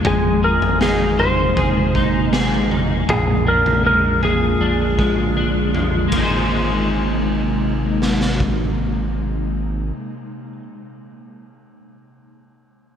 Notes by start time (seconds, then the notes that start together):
Already playing: G#3 A#3 D4 G#4
0.05 G#1 C3 G#3 D#4 G#4, kick, floor tom
0.43 G#4 A#4
0.62 G#1, floor tom
0.81 D#4 G#4, snare
1.19 C5, floor tom
1.57 G#1 G#4, kick, floor tom
1.95 D#4, kick
2.33 G#4, snare
2.71 D#4, floor tom
3.08 A#1 A#2 D3 F4 G#4, kick, floor tom
3.46 D4 A#4
3.66 A#1, floor tom
3.85 G#3 A#4
4.23 G#4, floor tom
4.61 A#1 D4
4.99 G#3, kick
5.37 D4
5.75 G#3, floor tom
6.08 G#3, ride
6.12 G#1 C3 G#3 A#3 D#4, kick
6.16 D#4 G#4
6.23 C5
8.02 snare
8.21 snare
8.40 kick